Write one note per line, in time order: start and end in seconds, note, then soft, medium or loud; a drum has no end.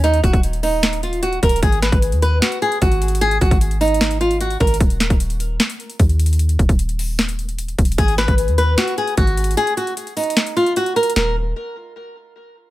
0.00 0.21 D#2 loud
0.00 0.19 D#4 medium
0.00 closed hi-hat medium
0.14 closed hi-hat medium
0.24 0.33 D#1 loud
0.24 0.39 F#4 medium
0.24 kick medium
0.24 closed hi-hat medium
0.33 1.39 D#1 medium
0.33 kick loud
0.33 closed hi-hat medium
0.43 closed hi-hat medium
0.53 closed hi-hat medium
0.63 1.00 D#4 medium
0.63 open hi-hat medium
0.83 snare loud
0.83 closed hi-hat medium
0.93 closed hi-hat medium
1.03 1.18 F4 medium
1.03 closed hi-hat medium
1.13 closed hi-hat medium
1.23 1.38 F#4 medium
1.23 closed hi-hat medium
1.33 closed hi-hat soft
1.43 1.62 D#1 loud
1.43 1.58 A#4 medium
1.43 kick loud
1.43 closed hi-hat medium
1.49 closed hi-hat medium
1.56 closed hi-hat medium
1.63 1.91 G#1 loud
1.63 1.78 G#4 medium
1.63 kick loud
1.63 closed hi-hat medium
1.72 closed hi-hat medium
1.82 1.98 B4 medium
1.82 snare medium
1.82 closed hi-hat medium
1.92 2.14 G#1 loud
1.92 kick loud
1.92 closed hi-hat medium
2.02 closed hi-hat medium
2.12 2.41 D#2 loud
2.12 closed hi-hat medium
2.22 2.38 B4 medium
2.22 closed hi-hat medium
2.42 2.58 F#4 medium
2.42 snare loud
2.42 closed hi-hat medium
2.52 closed hi-hat medium
2.62 2.77 G#4 medium
2.62 closed hi-hat medium
2.72 closed hi-hat medium
2.82 3.39 G#1 loud
2.82 3.19 F#4 medium
2.82 kick loud
2.82 closed hi-hat medium
2.92 closed hi-hat soft
3.02 closed hi-hat medium
3.08 closed hi-hat medium
3.15 closed hi-hat medium
3.21 3.37 G#4 loud
3.21 closed hi-hat medium
3.31 closed hi-hat medium
3.41 3.51 G#1 loud
3.41 3.57 F#4 medium
3.41 kick medium
3.41 closed hi-hat medium
3.51 4.57 G#1 loud
3.51 kick loud
3.51 closed hi-hat medium
3.61 closed hi-hat medium
3.71 closed hi-hat soft
3.81 4.18 D#4 medium
3.81 closed hi-hat soft
3.81 open hi-hat medium
3.88 closed hi-hat medium
3.94 closed hi-hat medium
4.01 snare loud
4.01 closed hi-hat medium
4.11 closed hi-hat medium
4.21 4.36 F4 medium
4.21 closed hi-hat medium
4.31 closed hi-hat medium
4.41 4.56 F#4 medium
4.41 closed hi-hat medium
4.50 closed hi-hat soft
4.60 4.80 G#1 loud
4.60 4.76 A#4 medium
4.60 kick loud
4.60 closed hi-hat medium
4.67 closed hi-hat medium
4.74 closed hi-hat medium
4.80 5.09 D#1 loud
4.80 kick loud
4.80 closed hi-hat medium
4.90 closed hi-hat medium
5.00 snare medium
5.00 closed hi-hat medium
5.10 5.58 D#1 loud
5.10 kick medium
5.10 closed hi-hat medium
5.20 closed hi-hat medium
5.30 closed hi-hat medium
5.40 closed hi-hat medium
5.60 snare loud
5.60 closed hi-hat medium
5.70 closed hi-hat medium
5.80 closed hi-hat medium
5.90 closed hi-hat soft
5.99 6.57 D#2 loud
5.99 kick loud
5.99 closed hi-hat medium
6.09 closed hi-hat soft
6.19 closed hi-hat medium
6.26 closed hi-hat medium
6.33 closed hi-hat medium
6.39 closed hi-hat medium
6.49 closed hi-hat medium
6.59 6.68 D#1 loud
6.59 kick medium
6.59 closed hi-hat medium
6.69 7.74 D#1 loud
6.69 kick medium
6.69 closed hi-hat medium
6.79 closed hi-hat medium
6.89 closed hi-hat medium
6.99 open hi-hat medium
7.19 snare loud
7.19 closed hi-hat medium
7.29 closed hi-hat medium
7.39 closed hi-hat medium
7.49 closed hi-hat medium
7.58 closed hi-hat medium
7.68 closed hi-hat soft
7.78 7.98 D#1 loud
7.78 kick loud
7.78 closed hi-hat medium
7.85 closed hi-hat medium
7.92 closed hi-hat medium
7.98 8.27 G#1 loud
7.98 8.14 G#4 loud
7.98 kick loud
7.98 closed hi-hat medium
8.08 closed hi-hat medium
8.18 8.34 B4 medium
8.18 snare medium
8.18 closed hi-hat medium
8.28 8.49 G#1 loud
8.28 kick loud
8.28 closed hi-hat medium
8.38 closed hi-hat medium
8.48 8.76 D#2 loud
8.48 closed hi-hat medium
8.58 8.73 B4 medium
8.58 closed hi-hat medium
8.78 8.93 F#4 loud
8.78 snare loud
8.78 closed hi-hat medium
8.88 closed hi-hat medium
8.98 9.13 G#4 medium
8.98 closed hi-hat medium
9.07 closed hi-hat medium
9.17 9.56 G#1 loud
9.17 9.55 F#4 medium
9.17 kick loud
9.17 closed hi-hat medium
9.27 closed hi-hat soft
9.37 closed hi-hat medium
9.44 closed hi-hat medium
9.51 closed hi-hat medium
9.57 9.73 G#4 loud
9.57 closed hi-hat medium
9.67 closed hi-hat medium
9.77 9.93 F#4 medium
9.77 closed hi-hat medium
9.87 closed hi-hat medium
9.97 closed hi-hat medium
10.07 closed hi-hat medium
10.17 10.54 D#4 medium
10.17 closed hi-hat soft
10.17 open hi-hat medium
10.23 closed hi-hat medium
10.30 closed hi-hat medium
10.37 snare loud
10.37 closed hi-hat medium
10.46 closed hi-hat medium
10.57 10.72 F4 medium
10.57 closed hi-hat medium
10.66 closed hi-hat medium
10.76 10.92 F#4 medium
10.76 closed hi-hat medium
10.86 closed hi-hat soft
10.96 11.12 A#4 medium
10.96 closed hi-hat medium
11.03 closed hi-hat medium
11.10 closed hi-hat medium
11.16 11.53 D#1 loud
11.16 11.35 A#4 medium
11.16 snare loud